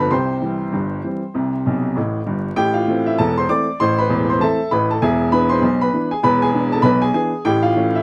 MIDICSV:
0, 0, Header, 1, 2, 480
1, 0, Start_track
1, 0, Tempo, 612245
1, 85, Time_signature, 2, 2, 24, 8
1, 6292, End_track
2, 0, Start_track
2, 0, Title_t, "Upright piano"
2, 0, Program_c, 0, 0
2, 0, Control_c, 0, 64, 127
2, 0, Note_on_c, 0, 31, 68
2, 0, Note_on_c, 0, 43, 78
2, 0, Note_on_c, 0, 50, 46
2, 0, Note_on_c, 0, 53, 43
2, 0, Note_on_c, 0, 59, 39
2, 0, Note_on_c, 0, 69, 69
2, 0, Note_on_c, 0, 71, 58
2, 0, Note_on_c, 0, 81, 90
2, 0, Note_on_c, 0, 83, 77
2, 83, Note_on_c, 0, 36, 61
2, 84, Note_on_c, 0, 48, 70
2, 84, Note_on_c, 0, 84, 85
2, 86, Note_off_c, 0, 71, 0
2, 91, Note_off_c, 0, 83, 0
2, 91, Note_on_c, 0, 79, 62
2, 93, Note_on_c, 0, 72, 68
2, 96, Control_c, 0, 64, 0
2, 100, Note_off_c, 0, 43, 0
2, 100, Note_off_c, 0, 50, 0
2, 101, Note_off_c, 0, 31, 0
2, 103, Note_off_c, 0, 53, 0
2, 104, Note_off_c, 0, 59, 0
2, 105, Note_off_c, 0, 81, 0
2, 106, Note_off_c, 0, 69, 0
2, 238, Control_c, 0, 64, 127
2, 289, Note_off_c, 0, 36, 0
2, 290, Note_off_c, 0, 48, 0
2, 328, Note_on_c, 0, 52, 44
2, 330, Note_on_c, 0, 55, 42
2, 334, Note_on_c, 0, 60, 48
2, 461, Note_off_c, 0, 52, 0
2, 462, Note_off_c, 0, 55, 0
2, 464, Note_off_c, 0, 60, 0
2, 569, Note_on_c, 0, 43, 63
2, 570, Note_on_c, 0, 31, 63
2, 579, Control_c, 0, 64, 0
2, 773, Note_off_c, 0, 43, 0
2, 774, Note_off_c, 0, 31, 0
2, 816, Note_on_c, 0, 52, 34
2, 819, Note_on_c, 0, 55, 39
2, 819, Note_on_c, 0, 60, 41
2, 947, Note_off_c, 0, 52, 0
2, 949, Note_off_c, 0, 55, 0
2, 949, Note_off_c, 0, 60, 0
2, 1052, Note_on_c, 0, 36, 61
2, 1058, Note_on_c, 0, 48, 67
2, 1177, Control_c, 0, 64, 127
2, 1256, Note_off_c, 0, 36, 0
2, 1259, Note_off_c, 0, 48, 0
2, 1300, Note_on_c, 0, 47, 60
2, 1304, Note_on_c, 0, 35, 63
2, 1477, Note_off_c, 0, 47, 0
2, 1480, Note_off_c, 0, 35, 0
2, 1536, Note_on_c, 0, 33, 64
2, 1540, Note_on_c, 0, 45, 62
2, 1544, Control_c, 0, 64, 0
2, 1715, Note_off_c, 0, 33, 0
2, 1718, Note_off_c, 0, 45, 0
2, 1744, Note_off_c, 0, 79, 0
2, 1745, Note_off_c, 0, 72, 0
2, 1772, Note_off_c, 0, 84, 0
2, 1775, Note_on_c, 0, 31, 61
2, 1775, Note_on_c, 0, 43, 62
2, 1955, Note_off_c, 0, 31, 0
2, 1955, Note_off_c, 0, 43, 0
2, 2009, Note_on_c, 0, 33, 69
2, 2009, Note_on_c, 0, 45, 82
2, 2009, Note_on_c, 0, 79, 113
2, 2022, Note_on_c, 0, 67, 79
2, 2146, Note_on_c, 0, 77, 76
2, 2150, Note_off_c, 0, 67, 0
2, 2154, Note_off_c, 0, 79, 0
2, 2159, Note_on_c, 0, 65, 55
2, 2173, Control_c, 0, 64, 127
2, 2215, Note_off_c, 0, 45, 0
2, 2216, Note_off_c, 0, 33, 0
2, 2255, Note_on_c, 0, 52, 46
2, 2256, Note_on_c, 0, 57, 47
2, 2260, Note_on_c, 0, 60, 55
2, 2381, Note_off_c, 0, 65, 0
2, 2387, Note_off_c, 0, 52, 0
2, 2387, Note_off_c, 0, 57, 0
2, 2391, Note_off_c, 0, 60, 0
2, 2391, Note_off_c, 0, 77, 0
2, 2402, Note_on_c, 0, 76, 79
2, 2410, Note_on_c, 0, 64, 57
2, 2495, Note_off_c, 0, 64, 0
2, 2496, Note_on_c, 0, 81, 102
2, 2497, Note_off_c, 0, 76, 0
2, 2497, Note_on_c, 0, 28, 74
2, 2500, Note_on_c, 0, 40, 74
2, 2501, Control_c, 0, 64, 0
2, 2502, Note_on_c, 0, 69, 76
2, 2630, Note_off_c, 0, 69, 0
2, 2637, Note_off_c, 0, 81, 0
2, 2646, Note_on_c, 0, 84, 90
2, 2660, Note_on_c, 0, 72, 65
2, 2699, Note_off_c, 0, 28, 0
2, 2701, Note_off_c, 0, 40, 0
2, 2735, Note_on_c, 0, 52, 42
2, 2738, Note_on_c, 0, 86, 92
2, 2739, Note_off_c, 0, 72, 0
2, 2739, Note_off_c, 0, 84, 0
2, 2742, Note_on_c, 0, 57, 50
2, 2743, Note_on_c, 0, 74, 70
2, 2746, Note_on_c, 0, 60, 59
2, 2866, Note_off_c, 0, 52, 0
2, 2871, Note_off_c, 0, 57, 0
2, 2874, Note_off_c, 0, 60, 0
2, 2961, Note_off_c, 0, 74, 0
2, 2975, Note_off_c, 0, 86, 0
2, 2979, Note_on_c, 0, 84, 113
2, 2981, Note_on_c, 0, 45, 72
2, 2985, Note_on_c, 0, 33, 78
2, 2991, Note_on_c, 0, 72, 80
2, 3114, Note_off_c, 0, 72, 0
2, 3116, Control_c, 0, 64, 127
2, 3118, Note_off_c, 0, 84, 0
2, 3124, Note_on_c, 0, 83, 90
2, 3133, Note_on_c, 0, 71, 66
2, 3169, Note_off_c, 0, 45, 0
2, 3171, Note_off_c, 0, 33, 0
2, 3212, Note_on_c, 0, 40, 79
2, 3213, Note_on_c, 0, 28, 70
2, 3347, Note_off_c, 0, 71, 0
2, 3359, Note_off_c, 0, 83, 0
2, 3369, Note_on_c, 0, 84, 82
2, 3380, Note_on_c, 0, 72, 68
2, 3403, Note_off_c, 0, 40, 0
2, 3404, Note_off_c, 0, 28, 0
2, 3457, Note_on_c, 0, 52, 48
2, 3457, Note_on_c, 0, 60, 49
2, 3458, Note_on_c, 0, 57, 49
2, 3458, Note_on_c, 0, 81, 100
2, 3459, Note_off_c, 0, 72, 0
2, 3459, Note_off_c, 0, 84, 0
2, 3460, Control_c, 0, 64, 0
2, 3464, Note_on_c, 0, 69, 71
2, 3470, Note_on_c, 0, 76, 73
2, 3587, Note_off_c, 0, 52, 0
2, 3588, Note_off_c, 0, 57, 0
2, 3588, Note_off_c, 0, 60, 0
2, 3681, Note_off_c, 0, 69, 0
2, 3685, Note_off_c, 0, 76, 0
2, 3694, Note_on_c, 0, 83, 90
2, 3695, Note_off_c, 0, 81, 0
2, 3699, Note_on_c, 0, 45, 74
2, 3701, Note_on_c, 0, 33, 73
2, 3706, Note_on_c, 0, 71, 67
2, 3831, Note_off_c, 0, 71, 0
2, 3835, Note_off_c, 0, 83, 0
2, 3847, Note_on_c, 0, 81, 78
2, 3854, Note_on_c, 0, 69, 64
2, 3887, Note_off_c, 0, 45, 0
2, 3889, Note_off_c, 0, 33, 0
2, 3933, Note_on_c, 0, 28, 74
2, 3935, Note_off_c, 0, 69, 0
2, 3937, Note_on_c, 0, 80, 96
2, 3938, Note_off_c, 0, 81, 0
2, 3938, Note_on_c, 0, 40, 88
2, 3940, Note_on_c, 0, 68, 77
2, 3947, Note_on_c, 0, 76, 78
2, 4078, Control_c, 0, 64, 127
2, 4136, Note_off_c, 0, 28, 0
2, 4139, Note_off_c, 0, 40, 0
2, 4159, Note_off_c, 0, 68, 0
2, 4162, Note_off_c, 0, 76, 0
2, 4172, Note_on_c, 0, 83, 100
2, 4173, Note_off_c, 0, 80, 0
2, 4174, Note_on_c, 0, 52, 49
2, 4176, Note_on_c, 0, 59, 48
2, 4177, Note_on_c, 0, 62, 56
2, 4181, Note_on_c, 0, 71, 66
2, 4305, Note_off_c, 0, 52, 0
2, 4306, Note_off_c, 0, 59, 0
2, 4307, Note_off_c, 0, 62, 0
2, 4308, Note_off_c, 0, 71, 0
2, 4308, Note_on_c, 0, 84, 91
2, 4313, Note_off_c, 0, 83, 0
2, 4320, Note_on_c, 0, 72, 65
2, 4402, Note_on_c, 0, 35, 72
2, 4402, Note_on_c, 0, 47, 69
2, 4420, Control_c, 0, 64, 0
2, 4540, Note_off_c, 0, 72, 0
2, 4550, Note_off_c, 0, 84, 0
2, 4558, Note_on_c, 0, 83, 89
2, 4566, Note_on_c, 0, 71, 65
2, 4609, Note_off_c, 0, 35, 0
2, 4609, Note_off_c, 0, 47, 0
2, 4652, Note_on_c, 0, 52, 48
2, 4655, Note_on_c, 0, 59, 47
2, 4659, Note_on_c, 0, 62, 50
2, 4782, Note_off_c, 0, 71, 0
2, 4783, Note_off_c, 0, 52, 0
2, 4785, Note_off_c, 0, 59, 0
2, 4788, Note_off_c, 0, 62, 0
2, 4792, Note_on_c, 0, 80, 81
2, 4795, Note_off_c, 0, 83, 0
2, 4798, Note_on_c, 0, 68, 61
2, 4885, Note_on_c, 0, 28, 77
2, 4886, Note_off_c, 0, 68, 0
2, 4886, Note_on_c, 0, 40, 84
2, 4890, Note_off_c, 0, 80, 0
2, 4890, Note_on_c, 0, 83, 105
2, 4895, Note_on_c, 0, 71, 78
2, 5024, Note_off_c, 0, 71, 0
2, 5031, Note_off_c, 0, 83, 0
2, 5034, Note_on_c, 0, 80, 96
2, 5041, Note_on_c, 0, 68, 70
2, 5045, Control_c, 0, 64, 127
2, 5090, Note_off_c, 0, 28, 0
2, 5091, Note_off_c, 0, 40, 0
2, 5125, Note_on_c, 0, 52, 48
2, 5132, Note_on_c, 0, 59, 48
2, 5135, Note_on_c, 0, 62, 52
2, 5258, Note_off_c, 0, 52, 0
2, 5259, Note_off_c, 0, 68, 0
2, 5263, Note_off_c, 0, 59, 0
2, 5265, Note_off_c, 0, 62, 0
2, 5271, Note_on_c, 0, 81, 89
2, 5272, Note_off_c, 0, 80, 0
2, 5283, Note_on_c, 0, 69, 63
2, 5348, Note_on_c, 0, 83, 111
2, 5350, Note_on_c, 0, 47, 76
2, 5353, Note_on_c, 0, 35, 80
2, 5361, Note_on_c, 0, 71, 78
2, 5368, Note_off_c, 0, 69, 0
2, 5368, Note_off_c, 0, 81, 0
2, 5378, Control_c, 0, 64, 0
2, 5496, Note_off_c, 0, 71, 0
2, 5500, Note_off_c, 0, 83, 0
2, 5502, Note_on_c, 0, 80, 94
2, 5508, Note_on_c, 0, 68, 68
2, 5562, Note_off_c, 0, 47, 0
2, 5563, Note_off_c, 0, 35, 0
2, 5588, Note_off_c, 0, 80, 0
2, 5594, Note_off_c, 0, 68, 0
2, 5597, Note_on_c, 0, 52, 50
2, 5599, Note_on_c, 0, 62, 54
2, 5599, Note_on_c, 0, 80, 88
2, 5601, Note_on_c, 0, 59, 47
2, 5605, Note_on_c, 0, 68, 66
2, 5731, Note_off_c, 0, 52, 0
2, 5733, Note_off_c, 0, 62, 0
2, 5734, Note_off_c, 0, 59, 0
2, 5829, Note_off_c, 0, 68, 0
2, 5840, Note_on_c, 0, 79, 110
2, 5842, Note_on_c, 0, 45, 87
2, 5843, Note_off_c, 0, 80, 0
2, 5843, Note_on_c, 0, 33, 78
2, 5848, Note_on_c, 0, 67, 75
2, 5979, Note_off_c, 0, 67, 0
2, 5979, Note_on_c, 0, 77, 92
2, 5985, Note_off_c, 0, 79, 0
2, 5992, Note_on_c, 0, 65, 70
2, 6011, Control_c, 0, 64, 127
2, 6047, Note_off_c, 0, 45, 0
2, 6048, Note_off_c, 0, 33, 0
2, 6082, Note_on_c, 0, 52, 45
2, 6085, Note_on_c, 0, 57, 50
2, 6088, Note_on_c, 0, 61, 53
2, 6213, Note_off_c, 0, 65, 0
2, 6215, Note_off_c, 0, 52, 0
2, 6217, Note_off_c, 0, 57, 0
2, 6219, Note_off_c, 0, 61, 0
2, 6223, Note_off_c, 0, 77, 0
2, 6235, Note_on_c, 0, 76, 83
2, 6249, Note_on_c, 0, 64, 67
2, 6292, Note_off_c, 0, 64, 0
2, 6292, Note_off_c, 0, 76, 0
2, 6292, End_track
0, 0, End_of_file